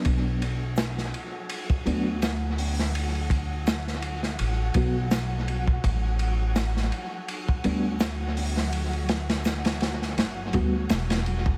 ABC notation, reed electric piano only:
X:1
M:4/4
L:1/8
Q:"Swing 16ths" 1/4=83
K:Bm
V:1 name="Reed electric piano"
[F,B,D] z4 [F,B,D] z2 | z4 z [F,B,F] z2 | z4 z [G,B,D] z2 | z4 z [G,B,F] z2 |]